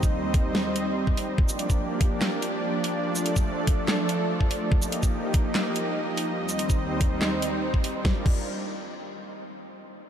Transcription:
Already playing: D#2 G3 C4 D#4 C5 D#5
0.03 kick, shaker
0.34 kick, closed hi-hat
0.55 snare
0.76 closed hi-hat
1.07 kick
1.17 open hi-hat
1.38 F3 A#3 D4 G4 D5, kick
1.49 shaker
1.59 closed hi-hat
1.70 kick, shaker
2.01 kick, closed hi-hat
2.21 snare, clap
2.42 closed hi-hat
2.84 open hi-hat
3.05 A3 A4
3.15 shaker
3.26 closed hi-hat
3.36 kick, shaker
3.67 kick, closed hi-hat
3.88 snare, clap
4.09 closed hi-hat
4.41 kick
4.51 open hi-hat
4.72 A#3 D#4 G4 D#5, kick
4.82 shaker
4.92 closed hi-hat
5.03 kick, shaker
5.34 kick, closed hi-hat
5.55 snare, clap
5.76 closed hi-hat
6.17 open hi-hat
6.38 D#2 G3 C4 D#4 C5
6.49 closed hi-hat, shaker
6.59 closed hi-hat
6.70 kick, shaker
7.01 kick, closed hi-hat
7.22 snare, clap
7.42 closed hi-hat
7.74 kick
7.84 open hi-hat
8.05 G3 D4 F4 A#4 D5, kick, snare
8.26 kick, crash

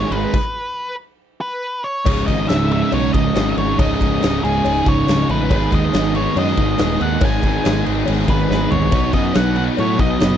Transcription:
Already playing: G#2 D#3 G#3 B3 D#4 G#4 B4 C#5
0.11 G#1 G#3 B4, ride
0.34 kick, crash
1.41 B4
1.84 C#5
2.06 C#1 C#2 G#2 C#3 G#3 D#4 C#5, kick, crash, cowbell
2.27 G#1 C#3 G#3 D#4 D#5, kick, crash
2.49 C#1 G#2 C#3 G#3 D#4 E5, snare, cowbell, crash
2.71 C#2 G#2 C#3 G#3 D#4 E5, crash
2.92 B1 C#2 G#2 C#3 G#3 D#4 C#5, cowbell, crash
3.14 C#1 D#5, kick, crash
3.35 G#1 C#2 G#2 C#3 G#3 D#4, snare, cowbell, crash
3.57 G#1 C#3 G#3 D#4 C#5, crash
3.79 C#1 C#2 G#2 C#3 G#3 D#4 D#5, kick, cowbell, crash
4.01 C#1 C#3 G#3 D#4, kick, crash
4.22 C#1 G#2 C#3 G#3 D#4, snare, cowbell, crash
4.42 C#1 G#2 C#3 G#3 D#4 G#4, crash
4.46 C#2 C#3
4.65 C#1 C#2 G#2 C#3 G#3 D#4, cowbell, crash
4.86 C#1 C#5, kick, crash
5.07 C#1 C#2 G#2 C#3 G#3 D#4, snare, cowbell, crash
5.29 A1 C#3 G#3 D#4 B4, crash
5.50 G#1 G#2 D#3 G#3 B3 D#4 G#4 B4, kick, cowbell, crash
5.72 D#2 G#3 B3 D#4 G#4 D#5, kick, crash
5.93 G#1 G#3 B3 D#4 G#4, snare, cowbell, crash
6.15 D#3 G#3 B3 D#4 G#4 C#5, crash
6.19 G#2
6.35 F#2 G#2 D#3 G#3 B3 D#4 G#4 D#5, cowbell, crash
6.57 G#1, kick, crash
6.78 D#1 G#2 D#3 G#3 B3 D#4 G#4, snare, cowbell, crash
6.99 D#2 G#3 B3 D#4 G#4 F#5, crash
7.21 G#1 G#2 D#3 G#3 B3 D#4 G#4, kick, cowbell, crash
7.25 G#5
7.42 G#1 G#3 B3 D#4 G#4, kick, crash
7.63 G#1 G#3 B3 D#4 G#4, snare, cowbell, crash
7.84 G#1 G#2 D#3 G#3 B3 D#4 G#4, crash
8.05 G#1 G#2 D#3 G#3 B3 D#4 G#4, cowbell, crash
8.28 G#1 B4, kick, crash
8.49 G#1 G#2 D#3 G#3 B3 D#4 G#4, snare, cowbell
8.71 G#1 G#3 B3 D#4 G#4 C#5, mid tom
8.82 floor tom
8.91 B1 B2 F#3 B3 D#4 F#4 B4, kick, cowbell, crash
9.13 F#2 B3 D#4 F#4 B4 D#5, kick, crash
9.34 B1 B3 D#4 F#4 B4 F#5, snare, cowbell, crash
9.56 B2 F#3 B3 D#4 F#4 B4 F#5, crash
9.77 A2 B2 F#3 B3 D#4 F#4 B4 C#5, cowbell, crash
9.99 B1 D#5, kick, crash
10.19 F#1 B2 F#3 B3 D#4 F#4 B4, snare, cowbell, crash

